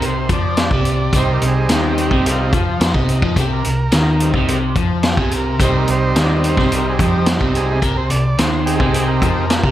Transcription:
Already playing: fingered electric bass C2, overdriven electric guitar C3
0.02 transistor combo organ C5, closed hi-hat
0.29 fingered electric bass F2, overdriven electric guitar F3, transistor combo organ D5, kick, closed hi-hat
0.57 snare, closed hi-hat
0.71 fingered electric bass C2, overdriven electric guitar C3, kick
0.85 closed hi-hat
1.13 fingered electric bass C2, overdriven electric guitar C3, transistor combo organ G3 C4, kick, closed hi-hat
1.17 transistor combo organ D#4 C5
1.33 transistor combo organ A#4
1.42 fingered electric bass C2, overdriven electric guitar C3, closed hi-hat
1.48 transistor combo organ G#4
1.69 fingered electric bass D#2, overdriven electric guitar D#3, snare, closed hi-hat
1.75 transistor combo organ G4
1.98 closed hi-hat
2.11 fingered electric bass C2, overdriven electric guitar C3, kick
2.26 transistor combo organ G3 C4 D#4, closed hi-hat
2.31 transistor combo organ F4
2.53 fingered electric bass F2, overdriven electric guitar F3, kick, closed hi-hat
2.80 fingered electric bass F2, overdriven electric guitar F3, snare, closed hi-hat
2.84 transistor combo organ D#4
2.94 fingered electric bass C2, overdriven electric guitar C3, kick
3.09 closed hi-hat
3.22 fingered electric bass F2, overdriven electric guitar F3, kick
3.36 fingered electric bass C2, overdriven electric guitar C3, transistor combo organ G4, kick, closed hi-hat
3.53 transistor combo organ A#4
3.64 fingered electric bass C2, overdriven electric guitar C3, closed hi-hat
3.92 fingered electric bass D#2, overdriven electric guitar D#3, snare, closed hi-hat
4.20 transistor combo organ G3 C4 D#4, closed hi-hat
4.33 fingered electric bass C2, overdriven electric guitar C3, kick
4.48 closed hi-hat
4.76 fingered electric bass F2, overdriven electric guitar F3, kick, closed hi-hat
5.03 snare, closed hi-hat
5.07 transistor combo organ G4
5.17 fingered electric bass C2, overdriven electric guitar C3, transistor combo organ G#4, kick
5.31 closed hi-hat
5.36 transistor combo organ A#4
5.60 fingered electric bass C2, overdriven electric guitar C3, transistor combo organ G3 C4 D#4, kick, closed hi-hat
5.64 transistor combo organ C5
5.78 transistor combo organ A#4
5.87 fingered electric bass C2, overdriven electric guitar C3, closed hi-hat
5.92 transistor combo organ C5
6.16 fingered electric bass D#2, overdriven electric guitar D#3, snare, closed hi-hat
6.20 transistor combo organ D5
6.44 closed hi-hat
6.49 transistor combo organ C5
6.57 fingered electric bass C2, overdriven electric guitar C3, kick, snare
6.72 transistor combo organ A#4, closed hi-hat
6.90 transistor combo organ G#4
6.99 fingered electric bass F2, overdriven electric guitar F3, kick, closed hi-hat
7.04 transistor combo organ G4
7.26 snare, closed hi-hat
7.40 fingered electric bass C2, overdriven electric guitar C3, kick
7.55 transistor combo organ G#4, closed hi-hat
7.82 fingered electric bass C2, overdriven electric guitar C3, transistor combo organ A#4, kick, closed hi-hat
7.97 transistor combo organ C5
8.10 fingered electric bass C2, overdriven electric guitar C3, transistor combo organ D5, closed hi-hat
8.38 fingered electric bass D#2, overdriven electric guitar D#3, transistor combo organ C5, snare, closed hi-hat
8.65 transistor combo organ C4 D#4 G4 G#4, closed hi-hat
8.80 fingered electric bass C2, overdriven electric guitar C3, kick
8.94 closed hi-hat
9.07 transistor combo organ A#4
9.22 fingered electric bass F2, overdriven electric guitar F3, kick, closed hi-hat
9.50 snare, closed hi-hat
9.63 fingered electric bass C2, overdriven electric guitar C3, kick

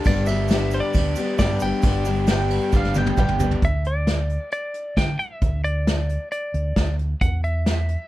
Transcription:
Already playing: overdriven electric guitar G3 D4
0.04 fingered electric bass G1, twelve-string acoustic guitar G2 D3 G3 B3 D4 G4, electric slide guitar D5, kick, crash, shaker
0.26 twelve-string acoustic guitar D4 G4, electric slide guitar E5, ride, shaker
0.30 twelve-string acoustic guitar G3 B3
0.48 twelve-string acoustic guitar G2 D3 G3 B3, snare, ride, shaker
0.52 twelve-string acoustic guitar D4 G4
0.71 overdriven electric guitar G3, electric slide guitar C5, ride, shaker
0.80 electric slide guitar D5
0.93 fingered electric bass D2, twelve-string acoustic guitar G3 B3 D4, kick, ride, shaker
0.98 twelve-string acoustic guitar G4
1.16 twelve-string acoustic guitar B3 D4 G4, ride, shaker
1.20 twelve-string acoustic guitar G3
1.38 fingered electric bass G2, twelve-string acoustic guitar G2 D3 G3 B3 D4 G4, electric slide guitar D5, kick, snare, ride, shaker
1.60 fingered electric bass G1, twelve-string acoustic guitar B3 D4 G4, electric slide guitar G5, ride, shaker
1.64 twelve-string acoustic guitar G3
1.82 fingered electric bass G1, twelve-string acoustic guitar G2 D3 G3 B3 D4 G4, kick, ride, shaker
2.05 twelve-string acoustic guitar G3 B3 D4 G4, ride, shaker
2.16 shaker
2.27 twelve-string acoustic guitar G2 D3 G3 B3 D4 G4, mandolin G5, snare, ride, shaker
2.50 overdriven electric guitar G3, ride
2.61 shaker
2.72 fingered electric bass G1, twelve-string acoustic guitar G3 B3 D4 G4, kick, snare, shaker
2.76 mandolin F5
2.84 snare
2.94 twelve-string acoustic guitar G3 B3 D4 G4, mandolin G5, high tom, shaker
3.06 high tom
3.17 fingered electric bass G1, twelve-string acoustic guitar G2 D3 G3 B3 D4 G4, mandolin G5, kick, mid tom, shaker
3.28 mid tom
3.40 twelve-string acoustic guitar G3 B3 D4 G4, floor tom, shaker
3.51 floor tom
3.62 fingered electric bass D2, electric slide guitar E5, kick, closed hi-hat
3.85 electric slide guitar D5, closed hi-hat
4.07 snare, closed hi-hat
4.29 closed hi-hat
4.51 electric slide guitar D5, closed hi-hat
4.74 closed hi-hat
4.97 fingered electric bass D3, electric slide guitar G5, kick, snare, closed hi-hat
5.19 electric slide guitar E5, closed hi-hat
5.41 fingered electric bass D2, kick, closed hi-hat
5.64 electric slide guitar D5, closed hi-hat
5.87 snare, closed hi-hat
6.09 closed hi-hat
6.32 electric slide guitar D5, closed hi-hat
6.54 fingered electric bass D2, closed hi-hat
6.76 fingered electric bass D2, kick, snare, closed hi-hat
6.99 closed hi-hat
7.21 fingered electric bass E2, electric slide guitar F#5, kick, closed hi-hat
7.44 electric slide guitar E5, closed hi-hat
7.66 snare, closed hi-hat
7.88 closed hi-hat

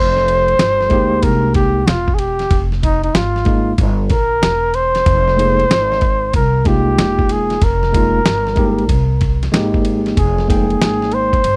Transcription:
Already playing: upright bass F1, flugelhorn C5
0.17 snare
0.28 ride
0.48 ride
0.59 upright bass G1, snare, hi-hat pedal, ride
0.81 snare
0.90 upright bass D2, tine electric piano G#3 A#3 D#4 G4, kick, ride
1.23 upright bass C2, flugelhorn A#4, kick, ride
1.54 flugelhorn G4, kick, ride
1.87 upright bass E1, flugelhorn F4, snare, hi-hat pedal, ride
2.08 kick
2.14 flugelhorn G#4
2.19 flugelhorn G4, ride
2.39 snare, ride
2.51 upright bass F1, kick, ride
2.72 snare
2.83 flugelhorn D#4, kick, ride
3.04 flugelhorn D#4, ride
3.14 upright bass G#1, flugelhorn F4, snare, hi-hat pedal, ride
3.36 snare
3.45 tine electric piano G#3 A#3 D#4 F4, kick, ride
3.78 upright bass G1, kick, ride
4.10 upright bass A#1, flugelhorn A#4, kick, ride
4.42 upright bass E1, snare, hi-hat pedal, ride
4.74 flugelhorn C5, ride
4.95 snare, ride
5.06 upright bass F1, kick, ride
5.28 snare
5.36 tine electric piano G#3 A#3 D#4 G#4, ride
5.60 ride
5.70 upright bass G#1, snare, hi-hat pedal, ride
5.92 snare
6.01 kick, ride
6.33 upright bass C2, flugelhorn A#4, kick, ride
6.65 tine electric piano G#3 A#3 D#4 F4, flugelhorn G4, kick, ride
6.98 upright bass E1, snare, hi-hat pedal, ride
7.19 kick
7.29 flugelhorn G#4, ride
7.50 snare, ride
7.62 upright bass F1, flugelhorn A#4, kick, ride
7.83 snare
7.93 tine electric piano G#3 A#3 D#4 F4, kick, ride
8.25 upright bass G1, snare, hi-hat pedal, ride
8.47 snare
8.56 tine electric piano G#3 A#3 D#4 G4, kick, ride
8.79 ride
8.89 upright bass C2, kick, ride
9.21 kick, ride
9.43 snare, ride
9.52 upright bass G#1, tine electric piano G#3 A#3 D#4 G4, snare, hi-hat pedal, ride
9.74 kick
9.85 ride
10.06 snare, ride
10.17 upright bass F1, flugelhorn G#4, kick, ride
10.38 snare
10.47 tine electric piano G#3 A#3 D#4 G5, flugelhorn G#4, kick, ride
10.70 ride
10.81 upright bass G#1, snare, hi-hat pedal, ride
11.02 snare
11.11 flugelhorn C5, ride
11.33 kick, ride
11.44 upright bass G1, ride

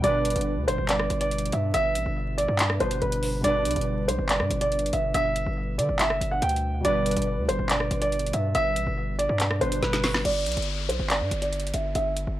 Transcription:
0.00 808-style bass G1, synth keys B2 G3, grand piano D5, closed hi-hat
0.04 synth keys D4 B4
0.25 closed hi-hat
0.30 closed hi-hat
0.36 808-style bass G1, closed hi-hat
0.41 closed hi-hat
0.57 808-style bass D2
0.68 808-style bass G1, grand piano C5, closed hi-hat
0.78 808-style bass G1
0.89 grand piano D5, clap, closed hi-hat
0.99 cross-stick
1.10 808-style bass G1, closed hi-hat
1.21 grand piano D5, closed hi-hat
1.31 closed hi-hat
1.38 closed hi-hat
1.46 closed hi-hat
1.52 808-style bass G2, grand piano E5, closed hi-hat
1.74 808-style bass G1, grand piano E5, closed hi-hat
1.95 808-style bass A1, closed hi-hat
2.06 808-style bass G1
2.38 grand piano D5, closed hi-hat
2.48 808-style bass G2
2.59 clap, closed hi-hat
2.70 cross-stick
2.79 808-style bass G1, synth keys B2 G3 D4 B4, grand piano C5, closed hi-hat
2.91 closed hi-hat
3.02 808-style bass G1, grand piano B4, closed hi-hat
3.12 closed hi-hat
3.23 open hi-hat
3.41 808-style bass G1, synth keys B2 G3, grand piano D5, closed hi-hat
3.46 synth keys D4 B4
3.65 808-style bass B1, closed hi-hat
3.71 closed hi-hat
3.76 808-style bass G1, closed hi-hat
3.81 closed hi-hat
4.08 808-style bass B1, grand piano C5, closed hi-hat
4.19 808-style bass G1
4.29 grand piano D5, clap, closed hi-hat
4.40 808-style bass G2, cross-stick
4.51 808-style bass G1, closed hi-hat
4.61 grand piano D5, closed hi-hat
4.72 closed hi-hat
4.79 closed hi-hat
4.86 closed hi-hat
4.93 808-style bass G1, grand piano E5, closed hi-hat
5.14 808-style bass G1, grand piano E5, closed hi-hat
5.36 closed hi-hat
5.46 808-style bass G1
5.78 808-style bass D3, grand piano D5, closed hi-hat
5.89 808-style bass G1
5.99 grand piano E5, clap, closed hi-hat
6.10 808-style bass F#1, cross-stick
6.21 808-style bass G1, closed hi-hat
6.31 grand piano F#5
6.42 808-style bass D2, grand piano G5, closed hi-hat
6.49 closed hi-hat
6.56 closed hi-hat
6.80 synth keys B2 G3
6.85 808-style bass G1, synth keys D4 B4, grand piano D5, closed hi-hat
7.06 closed hi-hat
7.11 closed hi-hat
7.16 808-style bass G1, closed hi-hat
7.22 closed hi-hat
7.38 808-style bass D2
7.48 808-style bass G1, grand piano C5, closed hi-hat
7.59 808-style bass G1
7.69 grand piano D5, clap, closed hi-hat
7.80 cross-stick
7.91 808-style bass G1, closed hi-hat
8.02 grand piano D5, closed hi-hat
8.12 closed hi-hat
8.19 closed hi-hat
8.27 closed hi-hat
8.33 808-style bass G2, grand piano E5, closed hi-hat
8.55 808-style bass G1, grand piano E5, closed hi-hat
8.76 808-style bass A1, closed hi-hat
8.87 808-style bass G1
9.19 grand piano D5, closed hi-hat
9.29 808-style bass G2
9.40 clap, closed hi-hat
9.51 cross-stick
9.60 808-style bass G1, synth keys B2 G3 D4 B4, grand piano C5, closed hi-hat
9.72 closed hi-hat
9.82 808-style bass G1, grand piano B4, snare, closed hi-hat
9.93 snare, closed hi-hat
10.04 snare, open hi-hat
10.14 snare
10.25 808-style bass G1, grand piano D5, closed hi-hat, crash, downlifter
10.46 808-style bass B1, closed hi-hat
10.52 closed hi-hat
10.57 808-style bass G1, closed hi-hat
10.62 closed hi-hat
10.89 808-style bass B1, grand piano C5, closed hi-hat
10.99 808-style bass G1
11.10 grand piano D5, clap, closed hi-hat
11.21 808-style bass G2
11.31 808-style bass G1, closed hi-hat
11.42 grand piano D5, closed hi-hat
11.53 closed hi-hat
11.60 closed hi-hat
11.67 closed hi-hat
11.74 808-style bass G1, grand piano E5, closed hi-hat
11.95 808-style bass G1, grand piano E5, closed hi-hat
12.17 closed hi-hat
12.27 808-style bass G1

